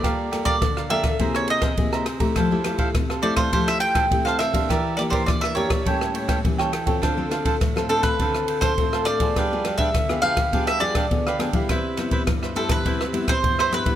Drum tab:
RD |x-xxx-xxx-xxx-xx|x-xxx-xxx-xxx-xx|x-xxx-xxx-xxx-xx|x-xxx-xxx-xxx-xx|
SD |r-r-rr-r-r-r-rr-|r-r-rr-r-r-r-rr-|r-r-rr-r-r-r-rr-|r-r-rr-r-r-r-rr-|
BD |o--oo--oo--oo--o|o--oo--oo--oo--o|o--oo--oo--oo--o|o--oo--oo--oo--o|

RD |x-xxx-xxx-xxx-xx|x-xxx-xxx-xxx-xx|
SD |r-r-rr-r-r-r-rr-|r-r-rr-r-r-r-rr-|
BD |o--oo--oo--oo--o|o--oo--oo--oo--o|